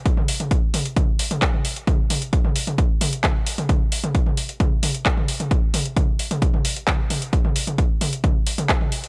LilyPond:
\new DrumStaff \with { instrumentName = "Drums" } \drummode { \time 4/4 \tempo 4 = 132 <hh bd>16 toml16 hho16 <hh toml>16 <hh bd>8 <hho toml>16 hh16 <hh bd toml>8 hho16 <hh toml>16 <hc hh bd>16 toml16 hho16 hh16 | <hh bd toml>8 <hho toml>16 hh16 <hh bd>16 toml16 hho16 <hh toml>16 <hh bd>8 <hho toml>16 hh16 <hc hh bd toml>8 hho16 <hh toml>16 | <hh bd toml>8 hho16 <hh toml>16 <hh bd>16 toml16 hho16 hh16 <hh bd toml>8 <hho toml>16 hh16 <hc hh bd>16 toml16 hho16 <hh toml>16 | <hh bd>8 <hho toml>16 hh16 <hh bd toml>8 hho16 <hh toml>16 <hh bd>16 toml16 hho16 hh16 <hc hh bd toml>8 <hho toml>16 hh16 |
<hh bd>16 toml16 hho16 <hh toml>16 <hh bd>8 <hho toml>16 hh16 <hh bd toml>8 hho16 <hh toml>16 <hc hh bd>16 toml16 hho16 hh16 | }